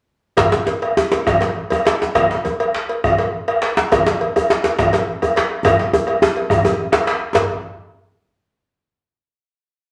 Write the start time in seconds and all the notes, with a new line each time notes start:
0.37 bombo rim, bombo low, cowbell, djembe slap, djembe bass
0.52 bombo rim, djembe slap, djembe tone
0.67 cowbell, djembe slap
0.82 bombo rim, cowbell
0.97 djembe slap, djembe tone
1.12 cowbell, djembe slap
1.27 bombo rim, bombo low, djembe slap, djembe bass
1.41 bombo rim, cowbell, djembe slap, djembe tone
1.70 bombo rim, cowbell, djembe tone
1.85 cowbell, djembe slap
2.02 bombo rim, djembe slap
2.15 bombo rim, bombo low, cowbell, djembe slap, djembe bass
2.30 bombo rim, djembe slap, djembe tone
2.45 cowbell, djembe slap, djembe tone
2.60 bombo rim, cowbell
2.74 djembe slap
2.89 cowbell
3.04 bombo rim, bombo low, djembe bass
3.18 bombo rim, cowbell, djembe slap, djembe tone
3.48 bombo rim, cowbell
3.62 cowbell, djembe slap
3.77 bombo rim, djembe slap
3.92 bombo rim, bombo low, cowbell, djembe slap, djembe bass
4.06 bombo rim, djembe slap, djembe tone
4.21 cowbell, djembe slap
4.36 bombo rim, cowbell, djembe tone
4.50 djembe slap
4.64 cowbell, djembe slap
4.79 bombo rim, bombo low, djembe slap, djembe bass
4.93 bombo rim, cowbell, djembe slap
5.22 bombo rim, cowbell, djembe tone
5.36 cowbell, djembe slap
5.51 bombo rim
5.65 bombo rim, bombo low, cowbell, djembe tone, djembe bass
5.79 bombo rim, djembe slap, djembe tone
5.93 bombo rim, cowbell, djembe slap, djembe tone
6.07 bombo rim, cowbell
6.22 djembe slap, djembe tone
6.36 cowbell, djembe slap
6.50 bombo rim, bombo low, djembe slap, djembe tone, djembe bass
6.65 cowbell, djembe slap, djembe tone
6.78 bombo rim
6.92 bombo rim, cowbell, djembe slap
7.07 cowbell, djembe slap
7.34 bombo low, cowbell, djembe slap, djembe bass